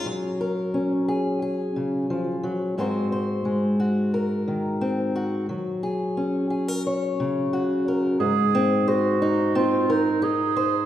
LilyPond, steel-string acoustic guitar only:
\new Staff \with { instrumentName = "Steel-string acoustic guitar" } { \time 4/4 \key aes \mixolydian \tempo 4 = 88 << { aes'8 bes'4 aes'8 aes'2 | <aes c' ges' c''>8 c''4 ges'8 bes'4 c'8 ges'8 | r8 aes'4 aes'16 bes'16 des''4 ges'8 bes'8 | r8 c'8 c''8 ees'8 c'8 bes'8 ees'8 c''8 | } \\ { ges4 des'4. des8 f8 ges8 | aes,4 aes4. ees4. | ges4 des'4. des4. | aes,1 | } >> }